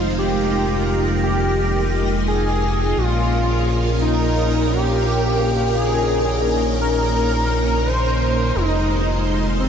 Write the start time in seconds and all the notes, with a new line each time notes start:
Already playing: F1 G#3 D#4 F4 C5
0.19 G4 A#4
1.23 G4
2.28 G#4
2.97 A#1 A#3 C#4 F4 A#4
4.02 D#4
4.72 G4
5.77 D#4 G#4
6.81 A#4
7.86 C5
8.55 F1 G#3 D#4 F4 C5
9.60 C4